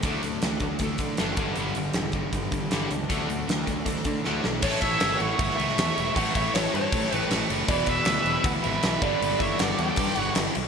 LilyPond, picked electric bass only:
\new Staff \with { instrumentName = "Picked electric bass" } { \clef bass \time 4/4 \key a \mixolydian \tempo 4 = 157 d,8 d,8 d,8 d,8 d,8 d8 fis,,8 g,,8 | g,,8 g,,8 e,,8 g,,8 g,,8 g,,8 g,,8 cis,8 | d,8 d,8 d,8 d,8 d,8 d8 d,8 b,,8 | a,,8 a,,8 g,,8 a,,8 g,,8 cis,8 e,8 e,,8 |
a,,8 a,,8 a,,8 g,8 a,8 a,,8 a,,8 fis,,8 | e,,8 e,,8 d,8 e,,8 d,8 gis,,8 b,,8 g,,8 | g,,8 g,,8 g,,8 e,8 g,8 g,,8 g,,8 b,,8 | }